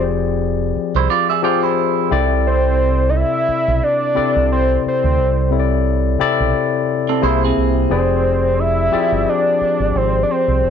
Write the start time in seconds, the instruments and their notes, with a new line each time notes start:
Already playing: fingered electric bass F1, tine electric piano F3 C4 G4 G#4 D5
0.76 muted fingered electric bass stroke
0.95 fingered electric bass C2, clean electric guitar E4 C5
1.10 clean electric guitar F4 D5
1.30 clean electric guitar G#4 E5
1.43 tine electric piano F3 C4 G4 G#4 C5, clean electric guitar F4 D5
1.63 clean electric guitar E4 C5
2.10 fingered electric bass C2, tine electric piano C3 C4 E4 A4 D5
2.47 analog synth lead C5
3.09 analog synth lead D#5
3.16 analog synth lead E5
3.48 muted fingered electric bass stroke
3.68 fingered electric bass B1
3.83 analog synth lead D5
4.15 tine electric piano C3 C4 E4 A4 D5, muted fingered electric bass stroke
4.36 fingered electric bass C2
4.52 analog synth lead C5
4.85 analog synth lead C5, muted fingered electric bass stroke
5.04 fingered electric bass D2
5.19 fingered electric bass C2
5.51 tine electric piano C3 C4 E4 A4 C#5
5.59 tine electric piano D5
6.19 tine electric piano C3 C4 E4 A4 D5, muted fingered electric bass stroke
6.40 fingered electric bass B1
7.09 clean electric guitar C4 A4
7.21 fingered electric bass C2, tine electric piano C3 A#3 E4 G#4 C5, clean electric guitar E4 C5
7.44 clean electric guitar C4 G#4
7.57 fingered electric bass C2
7.90 fingered electric bass F1, tine electric piano F3 C4 G4 G#4 D5, analog synth lead C5
8.59 analog synth lead E5
8.92 tine electric piano F3 C4 G4 G#4 D5, muted fingered electric bass stroke
9.12 fingered electric bass G1
9.29 analog synth lead D5
9.61 muted fingered electric bass stroke
9.80 fingered electric bass G#1
9.95 fingered electric bass G#1, analog synth lead C5
10.23 analog synth lead D5
10.31 analog synth lead C5
10.48 fingered electric bass C2
10.63 fingered electric bass F1